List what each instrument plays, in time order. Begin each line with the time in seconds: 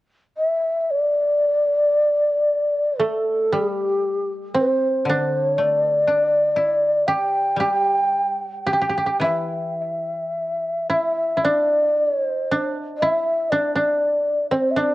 0.38 shakuhachi E5
0.80 shakuhachi E5
0.91 shakuhachi D5
2.99 koto A3, shakuhachi A4
3.52 koto G3, shakuhachi G4
4.54 koto C4
4.60 shakuhachi C5
5.05 koto D3, shakuhachi C5
5.09 koto D4
5.43 shakuhachi C#5
5.58 koto A3
5.66 shakuhachi D5
6.07 koto D4
6.56 koto E4
7.07 koto G4, shakuhachi G5
7.56 koto G3 G4, shakuhachi G5
8.66 koto G4, shakuhachi G5
8.73 koto G4
8.82 koto G4
8.90 koto G4
8.98 koto G4
9.06 koto G4
9.20 koto E3 E4, shakuhachi E5
10.90 koto E4, shakuhachi E5
11.37 koto E4
11.43 koto D4, shakuhachi D5
12.09 shakuhachi C#5
12.25 shakuhachi C5
12.51 koto D4
12.98 shakuhachi E5
13.02 koto E4
13.50 koto D4, shakuhachi D5
13.75 koto D4, shakuhachi D5
14.51 koto C4, shakuhachi C5 D5
14.71 shakuhachi E5
14.76 koto D4, shakuhachi D5